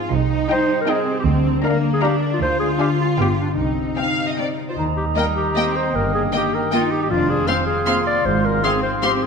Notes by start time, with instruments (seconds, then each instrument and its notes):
Already playing: harp G#2 F3 G#3 C4 F4 G#4 C5 F5, cello section F4
0.10 double bass section C2, harp C3, cello section D#4
0.30 harp C4
0.50 harp G3, viola section D#4, clarinet C5, violin section D#5 G5
0.69 harp G4
0.81 clarinet A#4
0.87 cello section C4, viola section D#4, clarinet G#4, harp D#5, violin section D#5 G5
1.08 harp G4
1.19 clarinet G4
1.25 double bass section D2, harp D3
1.46 harp A#3
1.64 cello section A#3, viola section D4, harp D4, clarinet A#4, violin section F5 A#5
1.84 harp A#4
1.94 clarinet G#4
2.02 viola section D4, cello section D4, clarinet G4, violin section F5 A#5, harp F5
2.22 harp D5
2.33 clarinet F4
2.41 double bass section D2, harp D3, cello section F4, clarinet C5
2.60 harp G#3, clarinet G#4
2.80 viola section D4, harp D4, clarinet G4, violin section F5 G#5
3.00 clarinet F4, harp G#4
3.19 double bass section G1, harp G2, viola section B3, clarinet G4, violin section F5 G5
3.39 harp B3 F4, clarinet D4
3.57 double bass section C2, harp C3, clarinet C4, cello section D#4
3.79 harp G3
3.98 viola section C4, harp C4, violin section F5 G5
4.18 harp G4
4.28 violin section D#5
4.38 viola section C4, violin section D5 G5, harp D#5
4.58 harp C5
4.68 clarinet F4, violin section C5
4.75 double bass section D#2, harp D#3, clarinet D#4, oboe D#5, flute section A#5
4.97 harp G3, clarinet G4
5.15 cello section G3, harp A#3, viola section A#3, clarinet A#4, violin section D#5 G5
5.35 harp D#4, clarinet G4
5.54 viola section A#3, cello section C4, harp G4, violin section D#5 G5
5.75 harp D#4, clarinet C5
5.93 double bass section G1, harp G2, cello section A#3, clarinet A#4, flute section G5
6.13 harp D#3, clarinet G#4
6.32 harp G3, cello section A#3, viola section A#3, clarinet G4, violin section D#5 G5
6.52 harp A#3, clarinet A#4
6.71 viola section A#3, cello section D#4, harp D#4, clarinet F4, violin section D#5 G5
6.91 harp A#3, clarinet G4
7.03 clarinet G4
7.10 double bass section F1, harp F2, cello section D4, clarinet F4, oboe F5, flute section C6
7.30 harp C3, clarinet G#4
7.47 harp G#3, cello section C4, viola section C4, clarinet C5, violin section F5 C6
7.66 harp C4, clarinet G#4
7.86 cello section A#3, viola section C4, harp F4, violin section F5 C6
8.06 harp C4, clarinet D5
8.24 double bass section G#1, harp G#2, cello section G#3, clarinet C5
8.44 harp G#3, clarinet A#4
8.63 harp F3, cello section C4, viola section C4, clarinet G#4, violin section F5 C6
8.83 harp C4, clarinet C5
9.02 cello section C4, viola section C4, harp F4, clarinet G4, violin section F5 C6
9.22 harp C4, clarinet G#4